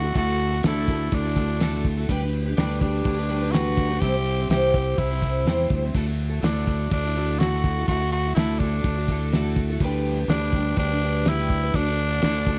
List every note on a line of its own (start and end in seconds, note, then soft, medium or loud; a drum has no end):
0.00 0.12 D2 loud
0.00 0.13 F#4 loud
0.00 0.15 A4 medium
0.04 0.14 E4 soft
0.04 0.15 F#4 medium
0.14 0.61 D2 loud
0.14 0.51 D3 medium
0.14 0.52 A3 medium
0.14 0.52 E4 medium
0.14 0.52 F#4 medium
0.14 0.62 F#4 loud
0.14 0.51 A4 medium
0.14 kick loud
0.14 crash medium
0.39 crash medium
0.52 0.64 E4 soft
0.52 0.64 F#4 medium
0.52 0.64 A4 medium
0.63 1.10 D2 loud
0.63 0.88 D3 medium
0.63 0.87 A3 medium
0.63 0.87 E4 medium
0.63 1.16 E4 loud
0.63 0.89 F#4 medium
0.63 0.89 A4 medium
0.63 snare loud
0.63 crash medium
0.88 1.24 A3 medium
0.88 1.25 E4 medium
0.88 1.24 F#4 medium
0.88 1.22 A4 medium
0.88 kick medium
0.88 crash medium
1.12 2.05 D2 loud
1.12 1.86 D4 medium
1.12 kick loud
1.12 crash medium
1.23 1.35 E4 soft
1.23 1.36 F#4 medium
1.23 1.36 A4 medium
1.35 1.59 A3 medium
1.35 1.60 E4 medium
1.35 1.61 F#4 medium
1.35 1.61 A4 medium
1.35 kick medium
1.35 crash medium
1.60 1.97 D3 medium
1.60 1.97 A3 medium
1.60 1.97 E4 medium
1.60 1.98 F#4 loud
1.60 1.96 A4 loud
1.60 snare loud
1.60 crash medium
1.74 snare soft
1.84 kick medium
1.84 crash medium
1.97 2.10 E4 medium
1.97 2.10 F#4 medium
1.97 2.09 A4 medium
2.09 2.55 D2 loud
2.09 2.21 D3 medium
2.09 2.22 G3 loud
2.09 2.22 D4 loud
2.09 2.21 G4 loud
2.09 2.21 B4 loud
2.09 kick loud
2.09 crash medium
2.22 2.47 D4 soft
2.22 2.46 G4 medium
2.22 2.44 B4 medium
2.33 crash medium
2.46 2.57 D4 soft
2.46 2.58 G4 medium
2.46 2.57 B4 medium
2.57 3.03 D2 loud
2.57 2.81 D3 medium
2.57 2.81 G3 medium
2.57 2.80 D4 medium
2.57 2.81 D4 medium
2.57 2.82 G4 medium
2.57 2.83 B4 medium
2.57 snare loud
2.57 crash medium
2.81 3.18 G3 medium
2.81 3.53 D4 medium
2.81 3.18 D4 medium
2.81 3.18 G4 medium
2.81 3.17 B4 medium
2.81 kick medium
2.81 crash medium
3.05 3.98 D2 loud
3.05 kick loud
3.05 crash loud
3.18 3.28 D4 soft
3.18 3.29 G4 soft
3.18 3.30 B4 medium
3.29 3.41 G3 medium
3.29 3.42 D4 medium
3.29 3.42 G4 medium
3.29 3.40 B4 medium
3.29 crash medium
3.41 3.54 D4 soft
3.41 3.55 G4 medium
3.41 3.54 B4 medium
3.52 3.90 D3 medium
3.52 3.90 G3 medium
3.52 3.91 D4 medium
3.52 4.01 F#4 loud
3.52 snare loud
3.52 crash medium
3.56 3.88 B4 medium
3.67 snare soft
3.77 kick medium
3.77 crash medium
3.90 4.03 D4 medium
3.90 4.03 G4 medium
3.90 4.02 B4 medium
4.00 4.48 C2 loud
4.00 4.14 C3 medium
4.00 4.14 E3 medium
4.00 4.15 G3 medium
4.00 4.15 C4 medium
4.00 4.14 E4 medium
4.00 4.49 G4 loud
4.00 kick loud
4.00 crash medium
4.04 4.13 C5 medium
4.14 4.40 G3 soft
4.14 4.39 C4 soft
4.14 4.39 E4 medium
4.14 4.37 C5 medium
4.26 crash medium
4.39 4.50 G3 medium
4.39 4.51 C4 soft
4.39 4.51 E4 medium
4.39 4.51 C5 medium
4.50 4.96 C2 loud
4.50 4.74 C3 medium
4.50 4.75 E3 medium
4.50 4.73 G3 medium
4.50 4.74 C4 medium
4.50 4.75 E4 medium
4.50 4.99 G4 loud
4.50 4.75 C5 loud
4.50 snare loud
4.50 crash medium
4.74 5.11 G3 medium
4.74 5.11 C4 medium
4.74 5.10 E4 medium
4.74 5.09 C5 medium
4.74 kick medium
4.74 crash medium
4.98 5.44 C2 loud
4.98 5.71 E4 loud
4.98 kick loud
4.98 crash medium
5.10 5.21 G3 soft
5.10 5.23 C4 soft
5.10 5.23 E4 medium
5.10 5.22 C5 medium
5.22 5.46 G3 medium
5.22 5.47 C4 medium
5.22 5.47 E4 medium
5.22 5.48 C5 medium
5.22 kick medium
5.22 crash medium
5.45 5.68 E2 medium
5.45 5.83 C3 medium
5.45 5.83 E3 medium
5.45 5.83 G3 medium
5.45 5.84 C4 medium
5.45 5.83 E4 medium
5.45 5.82 C5 loud
5.45 snare loud
5.45 crash medium
5.59 snare soft
5.70 5.92 D2 medium
5.70 kick medium
5.70 crash medium
5.83 5.95 G3 medium
5.83 5.95 C4 medium
5.83 5.94 E4 medium
5.83 5.95 C5 medium
5.94 6.40 D2 loud
5.94 6.07 D3 medium
5.94 6.07 A3 medium
5.94 6.07 E4 medium
5.94 6.07 F#4 loud
5.94 6.05 A4 loud
5.94 kick loud
5.94 crash medium
6.06 6.32 E4 medium
6.06 6.30 F#4 medium
6.06 6.28 A4 medium
6.19 crash medium
6.30 6.42 E4 soft
6.30 6.42 F#4 medium
6.30 6.42 A4 medium
6.42 6.89 D2 loud
6.42 6.67 D3 medium
6.42 6.65 A3 medium
6.42 6.89 D4 medium
6.42 6.66 E4 medium
6.42 6.67 F#4 medium
6.42 6.68 A4 medium
6.42 snare loud
6.42 crash medium
6.66 7.03 A3 medium
6.66 7.03 E4 medium
6.66 7.04 F#4 medium
6.66 7.02 A4 medium
6.66 kick medium
6.66 crash medium
6.91 7.84 D2 loud
6.91 7.41 D4 loud
6.91 kick loud
6.91 crash loud
7.04 7.16 E4 medium
7.04 7.16 F#4 soft
7.04 7.16 A4 medium
7.16 7.40 A3 medium
7.16 7.41 E4 medium
7.16 7.41 F#4 medium
7.16 7.41 A4 medium
7.16 crash medium
7.39 7.76 D3 medium
7.39 7.77 A3 medium
7.39 7.77 E4 medium
7.39 7.87 F#4 loud
7.39 7.77 F#4 medium
7.39 7.76 A4 medium
7.39 snare loud
7.39 crash medium
7.54 snare soft
7.64 kick medium
7.64 crash medium
7.77 7.90 E4 medium
7.77 7.89 F#4 medium
7.77 7.89 A4 medium
7.88 8.34 D2 medium
7.88 8.00 D3 medium
7.88 8.01 A3 medium
7.88 8.01 E4 medium
7.88 8.10 F#4 loud
7.88 8.01 F#4 medium
7.88 7.99 A4 medium
7.88 kick loud
7.88 crash medium
8.00 8.26 E4 soft
8.00 8.25 F#4 medium
8.00 8.24 A4 medium
8.12 8.34 F#4 loud
8.12 crash medium
8.25 8.36 E4 medium
8.25 8.37 F#4 medium
8.25 8.37 A4 medium
8.35 8.82 D2 loud
8.35 8.60 D3 medium
8.35 8.59 A3 medium
8.35 8.61 E4 loud
8.35 8.60 E4 medium
8.35 8.61 F#4 medium
8.35 8.61 A4 loud
8.35 snare loud
8.35 crash medium
8.59 8.97 A3 medium
8.59 9.56 D4 medium
8.59 8.97 E4 medium
8.59 8.96 F#4 medium
8.59 8.95 A4 medium
8.59 kick medium
8.59 crash medium
8.84 9.77 D2 loud
8.84 kick loud
8.84 crash medium
8.96 9.09 E4 soft
8.96 9.09 F#4 medium
8.96 9.08 A4 medium
9.08 9.33 A3 medium
9.08 9.33 E4 medium
9.08 9.33 F#4 medium
9.08 9.34 A4 medium
9.08 kick medium
9.08 crash medium
9.32 9.69 D3 medium
9.32 9.69 A3 medium
9.32 9.70 E4 medium
9.32 9.70 F#4 loud
9.32 9.69 A4 loud
9.32 snare loud
9.32 crash medium
9.56 kick medium
9.56 crash medium
9.70 9.83 E4 medium
9.70 9.82 F#4 medium
9.70 9.82 A4 medium
9.80 10.27 D2 loud
9.80 10.18 D3 medium
9.80 10.18 G3 medium
9.80 10.18 D4 medium
9.80 kick loud
9.80 crash medium
9.84 10.18 G4 medium
9.84 10.17 B4 loud
10.05 crash medium
10.18 10.30 D4 medium
10.18 10.30 G4 medium
10.18 10.30 B4 medium
10.28 10.74 D2 loud
10.28 10.54 D3 medium
10.28 10.54 G3 medium
10.28 10.74 D4 loud
10.28 10.54 D4 loud
10.28 10.55 G4 medium
10.28 snare loud
10.28 crash medium
10.33 10.55 B4 medium
10.52 10.91 G3 medium
10.52 kick medium
10.52 crash medium
10.57 10.91 D4 medium
10.57 10.90 G4 medium
10.57 10.89 B4 medium
10.77 11.70 D2 loud
10.77 11.31 D4 loud
10.77 kick loud
10.77 crash medium
10.90 11.03 D4 medium
10.90 11.03 G4 soft
10.90 11.02 B4 medium
11.01 11.26 G3 medium
11.01 11.27 D4 medium
11.01 11.27 G4 medium
11.01 11.27 B4 medium
11.01 crash medium
11.25 11.62 D3 medium
11.25 11.63 G3 medium
11.25 11.63 D4 medium
11.25 11.63 G4 medium
11.25 11.62 B4 loud
11.25 snare loud
11.25 crash medium
11.29 11.78 E4 loud
11.39 snare soft
11.50 kick medium
11.50 crash medium
11.63 11.75 D4 soft
11.63 11.76 G4 medium
11.63 11.75 B4 medium
11.74 12.20 D2 loud
11.74 11.86 D3 medium
11.74 11.87 A3 medium
11.74 12.59 D4 loud
11.74 11.87 D4 medium
11.74 11.87 F#4 medium
11.74 11.85 A4 medium
11.74 kick loud
11.74 crash medium
11.87 12.12 D4 soft
11.87 12.11 F#4 medium
11.87 12.09 A4 medium
11.98 crash medium
12.11 12.22 D4 soft
12.11 12.22 F#4 medium
12.11 12.23 A4 medium
12.22 12.59 D2 loud
12.22 12.47 D3 medium
12.22 12.45 A3 medium
12.22 12.46 D4 medium
12.22 12.47 F#4 medium
12.22 12.47 A4 medium
12.22 snare loud
12.22 crash medium
12.46 12.59 A3 medium
12.46 12.59 D4 medium
12.46 12.59 F#4 medium
12.46 12.59 A4 medium
12.46 kick medium
12.46 crash medium